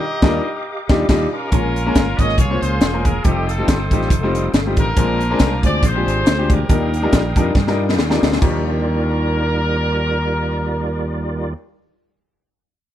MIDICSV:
0, 0, Header, 1, 6, 480
1, 0, Start_track
1, 0, Key_signature, -3, "major"
1, 0, Tempo, 430725
1, 1697, Time_signature, 4, 2, 24, 8
1, 14428, End_track
2, 0, Start_track
2, 0, Title_t, "Tonewheel organ"
2, 0, Program_c, 0, 16
2, 0, Note_on_c, 0, 67, 69
2, 0, Note_on_c, 0, 75, 67
2, 0, Note_on_c, 0, 77, 68
2, 0, Note_on_c, 0, 86, 80
2, 1673, Note_off_c, 0, 75, 0
2, 1674, Note_off_c, 0, 67, 0
2, 1674, Note_off_c, 0, 77, 0
2, 1674, Note_off_c, 0, 86, 0
2, 1696, Note_on_c, 0, 77, 65
2, 1696, Note_on_c, 0, 80, 60
2, 1697, Note_on_c, 0, 70, 69
2, 3600, Note_off_c, 0, 70, 0
2, 3600, Note_off_c, 0, 80, 0
2, 3615, Note_on_c, 0, 69, 74
2, 3616, Note_on_c, 0, 79, 67
2, 3619, Note_on_c, 0, 87, 80
2, 5500, Note_off_c, 0, 77, 0
2, 5518, Note_off_c, 0, 69, 0
2, 5518, Note_off_c, 0, 79, 0
2, 5520, Note_off_c, 0, 87, 0
2, 5536, Note_on_c, 0, 72, 71
2, 5537, Note_on_c, 0, 82, 66
2, 5540, Note_on_c, 0, 80, 67
2, 5546, Note_on_c, 0, 86, 81
2, 7437, Note_off_c, 0, 72, 0
2, 7438, Note_off_c, 0, 82, 0
2, 7439, Note_off_c, 0, 80, 0
2, 7442, Note_off_c, 0, 86, 0
2, 7461, Note_on_c, 0, 79, 68
2, 7468, Note_on_c, 0, 62, 69
2, 7468, Note_on_c, 0, 77, 61
2, 7469, Note_on_c, 0, 87, 78
2, 9358, Note_off_c, 0, 79, 0
2, 9361, Note_off_c, 0, 62, 0
2, 9361, Note_off_c, 0, 77, 0
2, 9362, Note_off_c, 0, 87, 0
2, 9380, Note_on_c, 0, 65, 66
2, 9384, Note_on_c, 0, 51, 63
2, 9385, Note_on_c, 0, 74, 81
2, 9387, Note_on_c, 0, 55, 70
2, 12851, Note_off_c, 0, 65, 0
2, 12855, Note_off_c, 0, 51, 0
2, 12856, Note_off_c, 0, 74, 0
2, 12858, Note_off_c, 0, 55, 0
2, 14428, End_track
3, 0, Start_track
3, 0, Title_t, "Horn section"
3, 0, Program_c, 1, 61
3, 0, Note_on_c, 1, 67, 80
3, 0, Note_on_c, 1, 70, 77
3, 0, Note_on_c, 1, 75, 122
3, 1165, Note_off_c, 1, 70, 0
3, 1167, Note_off_c, 1, 67, 0
3, 1211, Note_off_c, 1, 75, 0
3, 1478, Note_on_c, 1, 70, 98
3, 1480, Note_on_c, 1, 61, 73
3, 1491, Note_on_c, 1, 65, 83
3, 2397, Note_off_c, 1, 70, 0
3, 2398, Note_off_c, 1, 61, 0
3, 2404, Note_off_c, 1, 65, 0
3, 2435, Note_on_c, 1, 75, 109
3, 2651, Note_on_c, 1, 73, 110
3, 2654, Note_off_c, 1, 75, 0
3, 2669, Note_on_c, 1, 65, 77
3, 2671, Note_on_c, 1, 68, 78
3, 2902, Note_off_c, 1, 73, 0
3, 2904, Note_on_c, 1, 72, 100
3, 2910, Note_off_c, 1, 68, 0
3, 2914, Note_off_c, 1, 65, 0
3, 2924, Note_on_c, 1, 68, 77
3, 2928, Note_on_c, 1, 65, 71
3, 3360, Note_off_c, 1, 72, 0
3, 3399, Note_on_c, 1, 70, 90
3, 3574, Note_off_c, 1, 68, 0
3, 3576, Note_off_c, 1, 65, 0
3, 3611, Note_on_c, 1, 67, 93
3, 3616, Note_off_c, 1, 70, 0
3, 3629, Note_on_c, 1, 60, 66
3, 3631, Note_on_c, 1, 63, 68
3, 3880, Note_on_c, 1, 69, 93
3, 3881, Note_off_c, 1, 67, 0
3, 4095, Note_on_c, 1, 72, 92
3, 4097, Note_off_c, 1, 69, 0
3, 4098, Note_off_c, 1, 63, 0
3, 4109, Note_on_c, 1, 69, 72
3, 4111, Note_on_c, 1, 63, 66
3, 4540, Note_off_c, 1, 60, 0
3, 5020, Note_off_c, 1, 69, 0
3, 5021, Note_off_c, 1, 63, 0
3, 5057, Note_off_c, 1, 72, 0
3, 5345, Note_on_c, 1, 65, 79
3, 5346, Note_on_c, 1, 70, 105
3, 5347, Note_on_c, 1, 62, 78
3, 6250, Note_off_c, 1, 65, 0
3, 6251, Note_off_c, 1, 62, 0
3, 6251, Note_off_c, 1, 70, 0
3, 6311, Note_on_c, 1, 74, 103
3, 6512, Note_off_c, 1, 74, 0
3, 6516, Note_on_c, 1, 65, 82
3, 6516, Note_on_c, 1, 68, 79
3, 6536, Note_on_c, 1, 72, 104
3, 7260, Note_on_c, 1, 67, 70
3, 7263, Note_off_c, 1, 72, 0
3, 7267, Note_on_c, 1, 62, 67
3, 7282, Note_on_c, 1, 70, 96
3, 7422, Note_off_c, 1, 65, 0
3, 7422, Note_off_c, 1, 68, 0
3, 8859, Note_off_c, 1, 67, 0
3, 8863, Note_off_c, 1, 62, 0
3, 8915, Note_off_c, 1, 70, 0
3, 9382, Note_on_c, 1, 70, 98
3, 12853, Note_off_c, 1, 70, 0
3, 14428, End_track
4, 0, Start_track
4, 0, Title_t, "Upright piano"
4, 0, Program_c, 2, 0
4, 255, Note_on_c, 2, 55, 101
4, 257, Note_on_c, 2, 62, 104
4, 265, Note_on_c, 2, 63, 103
4, 265, Note_on_c, 2, 65, 96
4, 265, Note_on_c, 2, 70, 96
4, 436, Note_off_c, 2, 55, 0
4, 437, Note_off_c, 2, 62, 0
4, 441, Note_off_c, 2, 63, 0
4, 442, Note_off_c, 2, 65, 0
4, 442, Note_off_c, 2, 70, 0
4, 995, Note_on_c, 2, 55, 102
4, 997, Note_on_c, 2, 62, 106
4, 1003, Note_on_c, 2, 63, 104
4, 1005, Note_on_c, 2, 65, 100
4, 1008, Note_on_c, 2, 67, 100
4, 1144, Note_off_c, 2, 55, 0
4, 1145, Note_off_c, 2, 62, 0
4, 1148, Note_off_c, 2, 63, 0
4, 1150, Note_off_c, 2, 65, 0
4, 1151, Note_off_c, 2, 67, 0
4, 1213, Note_on_c, 2, 55, 109
4, 1214, Note_on_c, 2, 62, 101
4, 1220, Note_on_c, 2, 63, 104
4, 1223, Note_on_c, 2, 65, 107
4, 1225, Note_on_c, 2, 67, 101
4, 1395, Note_off_c, 2, 55, 0
4, 1396, Note_off_c, 2, 62, 0
4, 1399, Note_off_c, 2, 63, 0
4, 1401, Note_off_c, 2, 65, 0
4, 1403, Note_off_c, 2, 67, 0
4, 1706, Note_on_c, 2, 56, 68
4, 1706, Note_on_c, 2, 58, 62
4, 1712, Note_on_c, 2, 46, 58
4, 1712, Note_on_c, 2, 61, 62
4, 1714, Note_on_c, 2, 65, 61
4, 1720, Note_on_c, 2, 70, 76
4, 1914, Note_off_c, 2, 56, 0
4, 1914, Note_off_c, 2, 58, 0
4, 1917, Note_off_c, 2, 61, 0
4, 1917, Note_off_c, 2, 65, 0
4, 1920, Note_off_c, 2, 70, 0
4, 2075, Note_on_c, 2, 56, 91
4, 2076, Note_on_c, 2, 58, 86
4, 2081, Note_on_c, 2, 61, 81
4, 2083, Note_on_c, 2, 65, 82
4, 2091, Note_on_c, 2, 70, 102
4, 2259, Note_off_c, 2, 56, 0
4, 2259, Note_off_c, 2, 58, 0
4, 2262, Note_off_c, 2, 61, 0
4, 2263, Note_off_c, 2, 65, 0
4, 2267, Note_off_c, 2, 70, 0
4, 2407, Note_off_c, 2, 46, 0
4, 2443, Note_on_c, 2, 56, 70
4, 2449, Note_on_c, 2, 58, 67
4, 2452, Note_on_c, 2, 61, 66
4, 2454, Note_on_c, 2, 65, 64
4, 2455, Note_on_c, 2, 73, 80
4, 2614, Note_off_c, 2, 56, 0
4, 2617, Note_off_c, 2, 58, 0
4, 2619, Note_off_c, 2, 61, 0
4, 2620, Note_off_c, 2, 65, 0
4, 2620, Note_off_c, 2, 73, 0
4, 2786, Note_on_c, 2, 58, 69
4, 2787, Note_on_c, 2, 56, 73
4, 2788, Note_on_c, 2, 61, 64
4, 2797, Note_on_c, 2, 65, 67
4, 2797, Note_on_c, 2, 72, 83
4, 3042, Note_off_c, 2, 58, 0
4, 3043, Note_off_c, 2, 56, 0
4, 3043, Note_off_c, 2, 61, 0
4, 3048, Note_off_c, 2, 65, 0
4, 3048, Note_off_c, 2, 72, 0
4, 3269, Note_on_c, 2, 58, 64
4, 3271, Note_on_c, 2, 56, 69
4, 3273, Note_on_c, 2, 61, 64
4, 3281, Note_on_c, 2, 65, 65
4, 3282, Note_on_c, 2, 70, 84
4, 3467, Note_off_c, 2, 58, 0
4, 3468, Note_off_c, 2, 56, 0
4, 3469, Note_off_c, 2, 61, 0
4, 3473, Note_off_c, 2, 65, 0
4, 3474, Note_off_c, 2, 70, 0
4, 3615, Note_on_c, 2, 55, 69
4, 3620, Note_on_c, 2, 60, 67
4, 3620, Note_on_c, 2, 63, 67
4, 3622, Note_on_c, 2, 65, 65
4, 3628, Note_on_c, 2, 69, 77
4, 3829, Note_off_c, 2, 55, 0
4, 3831, Note_off_c, 2, 60, 0
4, 3831, Note_off_c, 2, 63, 0
4, 3833, Note_off_c, 2, 65, 0
4, 3836, Note_off_c, 2, 69, 0
4, 3990, Note_on_c, 2, 55, 76
4, 3996, Note_on_c, 2, 60, 69
4, 3996, Note_on_c, 2, 63, 72
4, 4002, Note_on_c, 2, 65, 68
4, 4005, Note_on_c, 2, 69, 89
4, 4177, Note_off_c, 2, 55, 0
4, 4180, Note_off_c, 2, 60, 0
4, 4180, Note_off_c, 2, 63, 0
4, 4183, Note_off_c, 2, 65, 0
4, 4185, Note_off_c, 2, 69, 0
4, 4367, Note_on_c, 2, 55, 75
4, 4370, Note_on_c, 2, 60, 69
4, 4377, Note_on_c, 2, 63, 72
4, 4380, Note_on_c, 2, 65, 72
4, 4382, Note_on_c, 2, 67, 84
4, 4537, Note_off_c, 2, 55, 0
4, 4539, Note_off_c, 2, 60, 0
4, 4542, Note_off_c, 2, 63, 0
4, 4543, Note_off_c, 2, 65, 0
4, 4545, Note_off_c, 2, 67, 0
4, 4716, Note_on_c, 2, 55, 92
4, 4718, Note_on_c, 2, 60, 86
4, 4722, Note_on_c, 2, 63, 84
4, 4725, Note_on_c, 2, 65, 83
4, 4729, Note_on_c, 2, 72, 101
4, 4967, Note_off_c, 2, 55, 0
4, 4968, Note_off_c, 2, 60, 0
4, 4970, Note_off_c, 2, 63, 0
4, 4972, Note_off_c, 2, 65, 0
4, 4974, Note_off_c, 2, 72, 0
4, 5194, Note_on_c, 2, 55, 73
4, 5201, Note_on_c, 2, 60, 69
4, 5202, Note_on_c, 2, 63, 67
4, 5208, Note_on_c, 2, 65, 67
4, 5208, Note_on_c, 2, 67, 78
4, 5390, Note_off_c, 2, 55, 0
4, 5393, Note_off_c, 2, 60, 0
4, 5394, Note_off_c, 2, 63, 0
4, 5396, Note_off_c, 2, 65, 0
4, 5396, Note_off_c, 2, 67, 0
4, 5539, Note_on_c, 2, 60, 70
4, 5540, Note_on_c, 2, 56, 77
4, 5540, Note_on_c, 2, 62, 68
4, 5541, Note_on_c, 2, 46, 63
4, 5543, Note_on_c, 2, 65, 70
4, 5547, Note_on_c, 2, 70, 81
4, 5751, Note_off_c, 2, 56, 0
4, 5751, Note_off_c, 2, 60, 0
4, 5751, Note_off_c, 2, 62, 0
4, 5753, Note_off_c, 2, 65, 0
4, 5755, Note_off_c, 2, 70, 0
4, 5913, Note_on_c, 2, 56, 94
4, 5917, Note_on_c, 2, 60, 88
4, 5918, Note_on_c, 2, 62, 84
4, 5922, Note_on_c, 2, 70, 102
4, 5925, Note_on_c, 2, 65, 87
4, 6098, Note_off_c, 2, 56, 0
4, 6100, Note_off_c, 2, 60, 0
4, 6101, Note_off_c, 2, 62, 0
4, 6103, Note_off_c, 2, 70, 0
4, 6104, Note_off_c, 2, 65, 0
4, 6241, Note_off_c, 2, 46, 0
4, 6280, Note_on_c, 2, 56, 72
4, 6285, Note_on_c, 2, 62, 67
4, 6286, Note_on_c, 2, 60, 64
4, 6290, Note_on_c, 2, 65, 68
4, 6293, Note_on_c, 2, 72, 81
4, 6453, Note_off_c, 2, 56, 0
4, 6456, Note_off_c, 2, 60, 0
4, 6456, Note_off_c, 2, 62, 0
4, 6458, Note_off_c, 2, 65, 0
4, 6460, Note_off_c, 2, 72, 0
4, 6630, Note_on_c, 2, 56, 75
4, 6631, Note_on_c, 2, 60, 70
4, 6634, Note_on_c, 2, 62, 68
4, 6639, Note_on_c, 2, 65, 68
4, 6643, Note_on_c, 2, 67, 85
4, 6884, Note_off_c, 2, 56, 0
4, 6884, Note_off_c, 2, 60, 0
4, 6886, Note_off_c, 2, 62, 0
4, 6888, Note_off_c, 2, 65, 0
4, 6890, Note_off_c, 2, 67, 0
4, 7111, Note_on_c, 2, 56, 71
4, 7113, Note_on_c, 2, 60, 63
4, 7117, Note_on_c, 2, 62, 67
4, 7118, Note_on_c, 2, 67, 80
4, 7120, Note_on_c, 2, 65, 67
4, 7307, Note_off_c, 2, 56, 0
4, 7308, Note_off_c, 2, 60, 0
4, 7310, Note_off_c, 2, 62, 0
4, 7311, Note_off_c, 2, 67, 0
4, 7312, Note_off_c, 2, 65, 0
4, 7449, Note_on_c, 2, 55, 70
4, 7455, Note_on_c, 2, 62, 64
4, 7458, Note_on_c, 2, 51, 62
4, 7459, Note_on_c, 2, 63, 69
4, 7464, Note_on_c, 2, 65, 65
4, 7466, Note_on_c, 2, 70, 79
4, 7665, Note_off_c, 2, 55, 0
4, 7668, Note_off_c, 2, 62, 0
4, 7670, Note_off_c, 2, 63, 0
4, 7672, Note_off_c, 2, 65, 0
4, 7673, Note_off_c, 2, 70, 0
4, 7832, Note_on_c, 2, 55, 88
4, 7832, Note_on_c, 2, 62, 81
4, 7837, Note_on_c, 2, 63, 88
4, 7838, Note_on_c, 2, 65, 81
4, 7839, Note_on_c, 2, 70, 99
4, 8017, Note_off_c, 2, 55, 0
4, 8017, Note_off_c, 2, 62, 0
4, 8019, Note_off_c, 2, 63, 0
4, 8020, Note_off_c, 2, 65, 0
4, 8021, Note_off_c, 2, 70, 0
4, 8158, Note_off_c, 2, 51, 0
4, 8203, Note_on_c, 2, 55, 85
4, 8206, Note_on_c, 2, 62, 78
4, 8209, Note_on_c, 2, 63, 77
4, 8213, Note_on_c, 2, 70, 95
4, 8216, Note_on_c, 2, 65, 77
4, 8373, Note_off_c, 2, 55, 0
4, 8375, Note_off_c, 2, 62, 0
4, 8376, Note_off_c, 2, 63, 0
4, 8379, Note_off_c, 2, 70, 0
4, 8380, Note_off_c, 2, 65, 0
4, 8547, Note_on_c, 2, 55, 86
4, 8550, Note_on_c, 2, 62, 81
4, 8551, Note_on_c, 2, 63, 77
4, 8557, Note_on_c, 2, 65, 74
4, 8563, Note_on_c, 2, 70, 94
4, 8801, Note_off_c, 2, 55, 0
4, 8803, Note_off_c, 2, 62, 0
4, 8803, Note_off_c, 2, 63, 0
4, 8806, Note_off_c, 2, 65, 0
4, 8809, Note_off_c, 2, 70, 0
4, 9021, Note_on_c, 2, 55, 77
4, 9028, Note_on_c, 2, 62, 74
4, 9030, Note_on_c, 2, 63, 75
4, 9030, Note_on_c, 2, 65, 73
4, 9036, Note_on_c, 2, 70, 93
4, 9221, Note_off_c, 2, 55, 0
4, 9225, Note_off_c, 2, 62, 0
4, 9225, Note_off_c, 2, 63, 0
4, 9225, Note_off_c, 2, 65, 0
4, 9229, Note_off_c, 2, 70, 0
4, 9348, Note_on_c, 2, 53, 77
4, 9372, Note_on_c, 2, 62, 71
4, 9376, Note_on_c, 2, 39, 76
4, 9382, Note_on_c, 2, 63, 69
4, 9398, Note_on_c, 2, 67, 89
4, 12819, Note_off_c, 2, 53, 0
4, 12842, Note_off_c, 2, 62, 0
4, 12846, Note_off_c, 2, 39, 0
4, 12853, Note_off_c, 2, 63, 0
4, 12869, Note_off_c, 2, 67, 0
4, 14428, End_track
5, 0, Start_track
5, 0, Title_t, "Fingered electric bass"
5, 0, Program_c, 3, 33
5, 251, Note_on_c, 3, 39, 104
5, 434, Note_off_c, 3, 39, 0
5, 998, Note_on_c, 3, 39, 100
5, 1146, Note_off_c, 3, 39, 0
5, 1215, Note_on_c, 3, 39, 96
5, 1397, Note_off_c, 3, 39, 0
5, 1699, Note_on_c, 3, 34, 96
5, 2107, Note_off_c, 3, 34, 0
5, 2181, Note_on_c, 3, 31, 100
5, 2406, Note_off_c, 3, 31, 0
5, 2434, Note_on_c, 3, 32, 88
5, 2620, Note_off_c, 3, 32, 0
5, 2651, Note_on_c, 3, 36, 103
5, 2880, Note_off_c, 3, 36, 0
5, 2922, Note_on_c, 3, 37, 93
5, 3105, Note_off_c, 3, 37, 0
5, 3135, Note_on_c, 3, 28, 94
5, 3545, Note_off_c, 3, 28, 0
5, 3622, Note_on_c, 3, 29, 100
5, 4029, Note_off_c, 3, 29, 0
5, 4103, Note_on_c, 3, 31, 96
5, 4327, Note_off_c, 3, 31, 0
5, 4357, Note_on_c, 3, 33, 92
5, 4543, Note_off_c, 3, 33, 0
5, 4570, Note_on_c, 3, 29, 106
5, 4982, Note_off_c, 3, 29, 0
5, 5055, Note_on_c, 3, 31, 105
5, 5283, Note_off_c, 3, 31, 0
5, 5317, Note_on_c, 3, 33, 86
5, 5503, Note_off_c, 3, 33, 0
5, 5537, Note_on_c, 3, 34, 115
5, 5946, Note_off_c, 3, 34, 0
5, 6018, Note_on_c, 3, 36, 99
5, 6244, Note_off_c, 3, 36, 0
5, 6278, Note_on_c, 3, 38, 83
5, 6463, Note_off_c, 3, 38, 0
5, 6494, Note_on_c, 3, 34, 98
5, 6722, Note_off_c, 3, 34, 0
5, 6754, Note_on_c, 3, 32, 90
5, 6941, Note_off_c, 3, 32, 0
5, 6983, Note_on_c, 3, 38, 93
5, 7389, Note_off_c, 3, 38, 0
5, 7459, Note_on_c, 3, 39, 114
5, 7866, Note_off_c, 3, 39, 0
5, 7944, Note_on_c, 3, 34, 100
5, 8167, Note_off_c, 3, 34, 0
5, 8202, Note_on_c, 3, 41, 80
5, 8384, Note_off_c, 3, 41, 0
5, 8410, Note_on_c, 3, 43, 97
5, 8902, Note_off_c, 3, 43, 0
5, 8902, Note_on_c, 3, 39, 93
5, 9125, Note_off_c, 3, 39, 0
5, 9167, Note_on_c, 3, 38, 82
5, 9347, Note_off_c, 3, 38, 0
5, 9383, Note_on_c, 3, 39, 98
5, 12854, Note_off_c, 3, 39, 0
5, 14428, End_track
6, 0, Start_track
6, 0, Title_t, "Drums"
6, 248, Note_on_c, 9, 36, 113
6, 248, Note_on_c, 9, 38, 110
6, 360, Note_off_c, 9, 36, 0
6, 360, Note_off_c, 9, 38, 0
6, 996, Note_on_c, 9, 38, 103
6, 998, Note_on_c, 9, 36, 106
6, 1107, Note_off_c, 9, 38, 0
6, 1109, Note_off_c, 9, 36, 0
6, 1214, Note_on_c, 9, 36, 110
6, 1215, Note_on_c, 9, 38, 100
6, 1215, Note_on_c, 9, 49, 80
6, 1325, Note_off_c, 9, 36, 0
6, 1327, Note_off_c, 9, 38, 0
6, 1327, Note_off_c, 9, 49, 0
6, 1692, Note_on_c, 9, 42, 82
6, 1695, Note_on_c, 9, 36, 115
6, 1803, Note_off_c, 9, 42, 0
6, 1807, Note_off_c, 9, 36, 0
6, 1965, Note_on_c, 9, 42, 80
6, 2076, Note_off_c, 9, 42, 0
6, 2177, Note_on_c, 9, 42, 89
6, 2180, Note_on_c, 9, 36, 83
6, 2182, Note_on_c, 9, 38, 119
6, 2289, Note_off_c, 9, 42, 0
6, 2291, Note_off_c, 9, 36, 0
6, 2293, Note_off_c, 9, 38, 0
6, 2437, Note_on_c, 9, 36, 96
6, 2442, Note_on_c, 9, 42, 73
6, 2447, Note_on_c, 9, 38, 34
6, 2549, Note_off_c, 9, 36, 0
6, 2553, Note_off_c, 9, 38, 0
6, 2553, Note_on_c, 9, 38, 40
6, 2554, Note_off_c, 9, 42, 0
6, 2651, Note_on_c, 9, 36, 102
6, 2656, Note_on_c, 9, 42, 93
6, 2665, Note_off_c, 9, 38, 0
6, 2763, Note_off_c, 9, 36, 0
6, 2768, Note_off_c, 9, 42, 0
6, 2926, Note_on_c, 9, 42, 80
6, 3038, Note_off_c, 9, 42, 0
6, 3129, Note_on_c, 9, 42, 80
6, 3136, Note_on_c, 9, 38, 115
6, 3240, Note_off_c, 9, 42, 0
6, 3248, Note_off_c, 9, 38, 0
6, 3398, Note_on_c, 9, 42, 73
6, 3400, Note_on_c, 9, 36, 98
6, 3510, Note_off_c, 9, 42, 0
6, 3511, Note_off_c, 9, 36, 0
6, 3614, Note_on_c, 9, 42, 83
6, 3620, Note_on_c, 9, 36, 110
6, 3725, Note_off_c, 9, 42, 0
6, 3731, Note_off_c, 9, 36, 0
6, 3889, Note_on_c, 9, 42, 78
6, 4000, Note_off_c, 9, 42, 0
6, 4101, Note_on_c, 9, 36, 88
6, 4102, Note_on_c, 9, 42, 91
6, 4107, Note_on_c, 9, 38, 121
6, 4213, Note_off_c, 9, 36, 0
6, 4213, Note_off_c, 9, 42, 0
6, 4218, Note_off_c, 9, 38, 0
6, 4359, Note_on_c, 9, 36, 93
6, 4362, Note_on_c, 9, 42, 75
6, 4470, Note_off_c, 9, 36, 0
6, 4474, Note_off_c, 9, 42, 0
6, 4477, Note_on_c, 9, 38, 39
6, 4573, Note_on_c, 9, 36, 102
6, 4583, Note_on_c, 9, 42, 99
6, 4588, Note_off_c, 9, 38, 0
6, 4684, Note_off_c, 9, 36, 0
6, 4694, Note_off_c, 9, 42, 0
6, 4847, Note_on_c, 9, 42, 78
6, 4958, Note_off_c, 9, 42, 0
6, 5055, Note_on_c, 9, 42, 80
6, 5062, Note_on_c, 9, 38, 120
6, 5166, Note_off_c, 9, 42, 0
6, 5174, Note_off_c, 9, 38, 0
6, 5311, Note_on_c, 9, 42, 74
6, 5316, Note_on_c, 9, 36, 105
6, 5423, Note_off_c, 9, 42, 0
6, 5427, Note_off_c, 9, 36, 0
6, 5534, Note_on_c, 9, 42, 85
6, 5535, Note_on_c, 9, 36, 108
6, 5645, Note_off_c, 9, 42, 0
6, 5647, Note_off_c, 9, 36, 0
6, 5801, Note_on_c, 9, 42, 73
6, 5913, Note_off_c, 9, 42, 0
6, 6011, Note_on_c, 9, 42, 90
6, 6015, Note_on_c, 9, 38, 116
6, 6018, Note_on_c, 9, 36, 85
6, 6122, Note_off_c, 9, 42, 0
6, 6127, Note_off_c, 9, 38, 0
6, 6129, Note_off_c, 9, 36, 0
6, 6277, Note_on_c, 9, 36, 96
6, 6278, Note_on_c, 9, 42, 74
6, 6283, Note_on_c, 9, 38, 34
6, 6389, Note_off_c, 9, 36, 0
6, 6390, Note_off_c, 9, 42, 0
6, 6394, Note_off_c, 9, 38, 0
6, 6493, Note_on_c, 9, 36, 103
6, 6503, Note_on_c, 9, 42, 91
6, 6605, Note_off_c, 9, 36, 0
6, 6615, Note_off_c, 9, 42, 0
6, 6777, Note_on_c, 9, 42, 76
6, 6888, Note_off_c, 9, 42, 0
6, 6979, Note_on_c, 9, 42, 80
6, 6986, Note_on_c, 9, 38, 113
6, 7090, Note_off_c, 9, 42, 0
6, 7097, Note_off_c, 9, 38, 0
6, 7241, Note_on_c, 9, 36, 110
6, 7242, Note_on_c, 9, 42, 72
6, 7352, Note_off_c, 9, 36, 0
6, 7353, Note_off_c, 9, 42, 0
6, 7459, Note_on_c, 9, 42, 85
6, 7461, Note_on_c, 9, 36, 119
6, 7570, Note_off_c, 9, 42, 0
6, 7572, Note_off_c, 9, 36, 0
6, 7730, Note_on_c, 9, 42, 74
6, 7842, Note_off_c, 9, 42, 0
6, 7941, Note_on_c, 9, 42, 90
6, 7943, Note_on_c, 9, 36, 84
6, 7945, Note_on_c, 9, 38, 121
6, 8052, Note_off_c, 9, 42, 0
6, 8054, Note_off_c, 9, 36, 0
6, 8057, Note_off_c, 9, 38, 0
6, 8201, Note_on_c, 9, 36, 100
6, 8207, Note_on_c, 9, 42, 76
6, 8312, Note_off_c, 9, 36, 0
6, 8319, Note_off_c, 9, 42, 0
6, 8414, Note_on_c, 9, 36, 101
6, 8420, Note_on_c, 9, 38, 56
6, 8526, Note_off_c, 9, 36, 0
6, 8531, Note_off_c, 9, 38, 0
6, 8551, Note_on_c, 9, 38, 53
6, 8662, Note_off_c, 9, 38, 0
6, 8794, Note_on_c, 9, 38, 69
6, 8899, Note_off_c, 9, 38, 0
6, 8899, Note_on_c, 9, 38, 89
6, 9010, Note_off_c, 9, 38, 0
6, 9036, Note_on_c, 9, 38, 81
6, 9147, Note_off_c, 9, 38, 0
6, 9172, Note_on_c, 9, 38, 108
6, 9280, Note_off_c, 9, 38, 0
6, 9280, Note_on_c, 9, 38, 91
6, 9383, Note_on_c, 9, 36, 108
6, 9383, Note_on_c, 9, 49, 84
6, 9392, Note_off_c, 9, 38, 0
6, 9494, Note_off_c, 9, 36, 0
6, 9494, Note_off_c, 9, 49, 0
6, 14428, End_track
0, 0, End_of_file